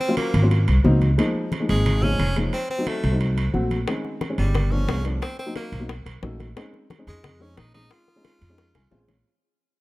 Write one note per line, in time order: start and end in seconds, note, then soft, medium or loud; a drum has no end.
0.00 0.16 C4 loud
0.00 high conga soft
0.08 0.32 F#3 medium
0.08 0.32 A#3 medium
0.08 0.33 C#4 medium
0.08 0.33 F4 medium
0.17 0.49 A#3 medium
0.17 high conga medium
0.17 high timbale medium
0.34 0.65 G#1 medium
0.34 high conga soft
0.34 high timbale medium
0.42 0.51 F#3 medium
0.42 0.51 A#3 medium
0.42 0.51 C#4 medium
0.42 0.51 F4 medium
0.51 high conga soft
0.51 high timbale medium
0.68 0.84 C2 medium
0.68 high conga soft
0.68 high timbale medium
0.84 1.14 C#2 medium
0.84 1.08 F#3 medium
0.84 1.08 A#3 medium
0.84 1.08 C4 medium
0.84 1.09 D#4 loud
0.84 high conga medium
1.01 high conga medium
1.01 high timbale medium
1.18 1.48 F3 medium
1.18 1.48 G#3 medium
1.18 1.48 A#3 medium
1.18 1.48 D#4 loud
1.18 high conga soft
1.18 high timbale medium
1.35 high conga soft
1.52 high conga medium
1.52 high timbale medium
1.60 1.90 F3 medium
1.60 1.90 G#3 medium
1.60 1.90 A#3 medium
1.60 1.90 D#4 medium
1.69 2.16 G#1 medium
1.69 2.05 G#3 medium
1.69 high conga soft
1.69 high timbale medium
1.86 high conga soft
1.86 low conga medium
1.86 high timbale medium
2.03 2.26 F3 medium
2.03 2.26 G#3 medium
2.03 2.27 A#3 medium
2.03 2.37 C#4 loud
2.03 2.27 D#4 medium
2.03 high conga soft
2.03 low conga medium
2.19 2.49 F1 medium
2.19 high conga medium
2.19 high timbale medium
2.36 2.53 F3 medium
2.36 2.53 G#3 medium
2.36 2.53 A#3 medium
2.36 2.54 D#4 medium
2.36 high conga medium
2.36 high timbale medium
2.53 2.69 C4 loud
2.53 high conga soft
2.53 high timbale medium
2.70 2.89 C4 loud
2.70 high conga soft
2.78 3.02 F#3 medium
2.78 3.02 A3 medium
2.78 3.02 C4 medium
2.78 3.02 D#4 medium
2.87 3.21 A3 medium
2.87 high conga medium
2.87 high timbale medium
3.04 3.51 C2 medium
3.04 high conga soft
3.04 high timbale medium
3.12 3.41 F#3 medium
3.12 3.41 A3 medium
3.12 3.42 C4 medium
3.12 3.42 D#4 medium
3.21 high timbale medium
3.37 high conga soft
3.37 high timbale medium
3.54 3.84 A#1 medium
3.54 3.77 F#3 medium
3.54 3.78 A3 medium
3.54 3.78 C4 medium
3.54 3.78 F#4 medium
3.54 high conga medium
3.71 high conga medium
3.71 high timbale medium
3.87 4.17 D#3 medium
3.87 4.17 G#3 medium
3.87 4.17 C4 medium
3.87 4.17 C#4 medium
3.87 high bongo medium
3.87 high conga soft
3.87 high timbale medium
4.04 high bongo soft
4.04 high conga soft
4.21 high bongo medium
4.21 high conga medium
4.21 high timbale medium
4.29 4.55 D#3 medium
4.29 4.55 G#3 medium
4.29 4.55 C4 medium
4.29 4.55 C#4 medium
4.38 4.85 G1 medium
4.38 4.73 G3 medium
4.38 high conga soft
4.38 high timbale medium
4.55 high bongo medium
4.55 high conga soft
4.55 low conga medium
4.55 high timbale medium
4.71 4.95 F3 medium
4.71 4.95 A3 medium
4.71 4.95 B3 medium
4.71 5.05 C#4 loud
4.71 4.96 D4 medium
4.71 high bongo soft
4.71 high conga soft
4.71 low conga medium
4.88 5.18 C2 medium
4.88 high bongo medium
4.88 low bongo medium
4.88 high conga medium
4.88 high timbale medium
4.88 low timbale medium
5.04 5.22 F3 medium
5.04 5.22 A3 medium
5.04 5.22 B3 medium
5.04 5.22 D4 medium
5.04 high bongo soft
5.04 high timbale medium
5.22 5.38 C4 medium
5.22 high bongo medium
5.22 high conga soft
5.22 high timbale medium
5.39 5.55 C4 medium
5.39 high bongo soft
5.39 high conga soft
5.46 5.70 F#3 medium
5.46 5.71 A#3 medium
5.46 5.71 C4 medium
5.46 5.71 D#4 medium
5.56 5.88 A#3 medium
5.56 high bongo medium
5.56 high conga medium
5.56 high timbale medium
5.72 6.04 B1 medium
5.72 high conga soft
5.72 high timbale medium
5.80 5.89 F#3 medium
5.80 5.89 A#3 medium
5.80 5.89 C4 medium
5.80 5.89 D#4 medium
5.89 high bongo medium
5.89 high conga soft
5.89 high timbale medium
6.06 6.21 B1 medium
6.06 high bongo soft
6.06 high conga soft
6.06 high timbale medium
6.22 6.52 A#1 medium
6.22 6.46 F#3 medium
6.22 6.46 A3 medium
6.22 6.47 C#4 medium
6.22 6.47 D#4 medium
6.22 high bongo medium
6.22 low bongo medium
6.22 high conga medium
6.40 high bongo soft
6.40 high conga medium
6.40 high timbale medium
6.56 6.86 G#3 medium
6.56 6.86 C4 medium
6.56 6.86 C#4 medium
6.56 6.86 D#4 medium
6.56 high bongo medium
6.56 high conga soft
6.56 high timbale medium
6.73 high bongo soft
6.73 high conga soft
6.90 high bongo medium
6.90 high conga medium
6.90 high timbale medium
6.98 7.28 G#3 medium
6.98 7.28 C4 medium
6.98 7.28 C#4 medium
6.98 7.28 D#4 medium
7.07 7.54 F2 loud
7.07 7.43 G#3 medium
7.07 high conga soft
7.07 high timbale medium
7.24 high bongo medium
7.24 high conga soft
7.24 low conga medium
7.24 high timbale medium
7.40 7.64 G#3 medium
7.40 7.64 C4 medium
7.40 7.64 C#4 medium
7.40 7.59 C#4 medium
7.40 7.64 D#4 medium
7.40 high bongo soft
7.40 high conga soft
7.57 7.87 A#1 medium
7.57 7.74 D#4 medium
7.57 high bongo medium
7.57 low bongo medium
7.57 high conga medium
7.57 high timbale medium
7.74 8.03 G#3 medium
7.74 8.03 C4 medium
7.74 8.04 C#4 medium
7.74 7.93 D#4 loud
7.74 8.04 D#4 medium
7.74 high bongo soft
7.74 high conga medium
7.74 high timbale medium
7.91 9.09 F4 loud
7.91 high bongo medium
7.91 high conga soft
7.91 high timbale medium
8.08 high bongo soft
8.08 high conga soft
8.16 8.40 G#3 medium
8.16 8.40 C4 medium
8.16 8.40 C#4 medium
8.16 8.40 D#4 medium
8.25 high bongo medium
8.25 high conga medium
8.25 high timbale medium
8.41 8.73 F2 medium
8.41 high conga soft
8.41 high timbale medium
8.49 8.79 G#3 medium
8.49 8.79 C4 medium
8.49 8.79 C#4 medium
8.49 8.79 D#4 medium
8.58 high bongo medium
8.58 high conga soft
8.58 high timbale medium
8.75 8.90 C2 medium
8.75 8.91 G#5 medium
8.75 high bongo medium
8.75 high conga soft
8.75 high timbale medium
8.91 9.21 A#1 medium
8.91 9.15 G#3 medium
8.91 9.15 C4 medium
8.91 9.15 C#4 medium
8.91 9.15 F4 loud
8.91 9.07 F5 medium
8.91 low bongo medium
8.91 high conga medium
8.91 low timbale medium
9.08 9.24 C#5 medium
9.08 low bongo medium
9.08 high conga medium
9.08 high timbale medium